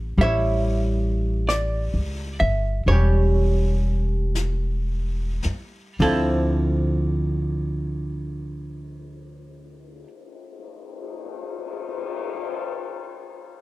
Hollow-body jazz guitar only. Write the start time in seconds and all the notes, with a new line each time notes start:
Already playing: G3 A#3 C#4 G4
0.18 G3 C#5 E5
0.24 E4
1.49 D5
2.40 E5
2.88 G3 C#4 C#5
2.92 G4
6.00 D3 F3 C4 E4 A4